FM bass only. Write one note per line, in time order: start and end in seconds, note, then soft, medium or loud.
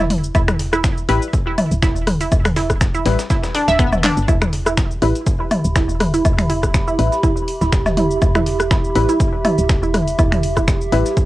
0.00 0.31 E1 loud
0.35 0.93 E1 loud
1.09 1.19 A1 medium
1.71 1.97 D1 medium
1.96 2.28 E1 medium
2.32 2.90 E1 loud
3.05 3.16 A1 medium
3.68 3.94 D1 medium
3.93 4.11 E1 medium
4.17 4.26 G1 medium
4.28 4.86 E1 loud
5.02 5.13 A1 medium
5.65 5.91 D1 medium
5.89 6.21 E1 loud
6.25 6.83 E1 loud
6.99 7.09 A1 medium
7.61 7.88 D1 medium
7.86 8.18 E1 loud
8.22 8.80 E1 loud
8.96 9.06 A1 medium
9.58 9.84 D1 medium
9.83 10.15 E1 loud
10.19 10.77 E1 loud
10.92 11.03 A1 medium